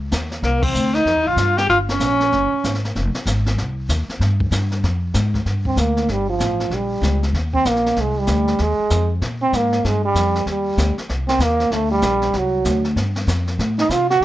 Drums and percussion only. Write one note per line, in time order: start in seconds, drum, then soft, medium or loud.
0.12 snare medium
0.12 hi-hat pedal medium
0.31 snare soft
0.43 brush sweep soft
0.43 snare soft
0.63 kick medium
0.63 crash medium
0.74 hi-hat pedal medium
0.95 snare soft
1.06 brush sweep medium
1.06 snare soft
1.37 snare medium
1.37 hi-hat pedal medium
1.58 snare soft
1.69 brush sweep medium
1.69 snare soft
1.89 snare soft
2.00 snare medium
2.00 hi-hat pedal medium
2.20 snare soft
2.32 brush sweep medium
2.32 snare soft
2.64 snare medium
2.64 hi-hat pedal medium
2.74 snare soft
2.85 snare soft
2.96 brush sweep medium
2.96 snare soft
3.15 snare soft
3.26 snare medium
3.26 hi-hat pedal medium
3.46 snare soft
3.58 brush sweep soft
3.58 snare soft
3.89 snare medium
3.89 hi-hat pedal medium
4.09 snare soft
4.21 brush sweep medium
4.21 snare medium
4.40 kick medium
4.52 snare medium
4.52 hi-hat pedal medium
4.71 snare soft
4.83 brush sweep soft
4.83 snare soft
5.14 snare medium
5.14 hi-hat pedal medium
5.34 kick medium
5.34 snare soft
5.46 brush sweep soft
5.46 snare soft
5.65 kick medium
5.77 snare medium
5.77 hi-hat pedal soft
5.97 snare soft
6.08 brush sweep soft
6.08 snare soft
6.40 snare medium
6.40 hi-hat pedal medium
6.60 snare soft
6.71 brush sweep soft
6.71 snare soft
7.03 snare medium
7.03 hi-hat pedal medium
7.23 snare soft
7.34 brush sweep soft
7.34 snare soft
7.54 kick soft
7.65 snare medium
7.65 hi-hat pedal medium
7.76 snare soft
7.86 snare soft
7.96 brush sweep soft
7.96 snare soft
8.27 snare medium
8.27 hi-hat pedal soft
8.47 snare soft
8.58 brush sweep soft
8.58 snare soft
8.90 snare medium
8.90 hi-hat pedal medium
9.22 brush sweep soft
9.22 snare soft
9.53 snare medium
9.53 hi-hat pedal medium
9.72 snare soft
9.85 brush sweep medium
9.85 snare soft
10.15 snare medium
10.15 hi-hat pedal medium
10.35 snare soft
10.47 brush sweep soft
10.47 snare soft
10.78 snare medium
10.78 hi-hat pedal medium
10.98 snare soft
11.09 brush sweep soft
11.09 snare soft
11.29 snare medium
11.40 snare medium
11.40 hi-hat pedal medium
11.60 snare soft
11.71 brush sweep soft
11.71 snare soft
12.02 snare medium
12.02 hi-hat pedal medium
12.22 snare soft
12.33 brush sweep soft
12.33 snare soft
12.65 snare medium
12.65 hi-hat pedal medium
12.84 snare soft
12.97 brush sweep medium
12.97 snare soft
13.16 snare soft
13.27 snare medium
13.27 hi-hat pedal medium
13.47 snare soft
13.59 brush sweep soft
13.59 snare soft
13.79 snare medium
13.90 snare medium
13.90 hi-hat pedal medium
14.10 snare soft